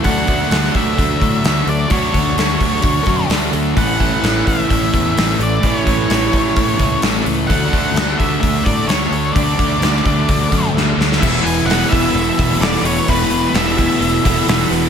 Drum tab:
CC |----------------|----------------|----------------|----------------|
HH |o-o-o-o-o-o-o-o-|o-o-o-o-o-o-o-o-|o-o-o-o-o-o-o-o-|o-o-o-o-o-o-o-o-|
SD |----oo------o---|----o-------o---|----o-------o---|----o-------o---|
BD |o-o---o-o-o-----|o-o---o-o-o-----|o-o---o-o-o-----|o-o---o-o-o-----|

CC |----------------|----------------|x---------------|----------------|
HH |o-o-o-o-o-o-o-o-|o-o-o-o-o-o-----|--o-o-o-o-o-o-o-|o-o-o-o-o-o-o-o-|
SD |----o-------o---|----oo------o-oo|----o-------oo--|----o-------o---|
BD |o-o---o-o-o-----|o-o---o-o-o-----|o-----o---o-----|o-----o---o-----|